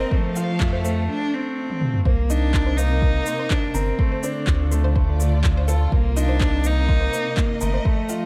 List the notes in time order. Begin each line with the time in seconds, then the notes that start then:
Already playing: C3 A#3 C4 D#4 A#4 D#5
0.00 C5
0.10 F3 A3 C5, kick
0.25 F5
0.29 A4
0.36 F4, shaker
0.60 F2 A3 C6, kick, clap
0.73 C5
0.84 A3 C5, shaker
1.10 D4
1.34 C4
1.70 high tom
1.81 mid tom
1.94 mid tom
2.05 C2 C3 A#3 C5, kick
2.30 D4 D#4, shaker
2.45 A#4
2.54 C6, kick, clap
2.63 C5 D#5
2.78 A#3 D#4 C5, shaker
3.02 A#3, kick
3.26 A#3 C6, shaker
3.39 C5
3.50 D4 C5, kick, clap
3.74 G1 C4 A#4, shaker
3.99 D3 A3 C6, kick
4.12 C5
4.23 D4 C5, shaker
4.47 D2, kick, clap
4.56 F4
4.71 A3 C6, shaker
4.84 C5 D5
4.95 A3 C5, kick
5.20 A3, shaker
5.44 C6, kick, clap
5.57 C5
5.68 A4 C5, shaker
5.92 C2 C3 A#3, kick
6.09 A#4
6.16 D4 D#4 C6, shaker
6.29 C5
6.40 C5, kick, clap
6.64 A#3 D#4 D#5, shaker
6.88 A#3 C6, kick
7.00 C5
7.13 A#3 C5, shaker
7.37 A#3, kick, clap
7.61 G1 A3 A#4 C6, shaker
7.74 C5
7.85 F3 A3 C5, kick
8.03 A4
8.09 F4, shaker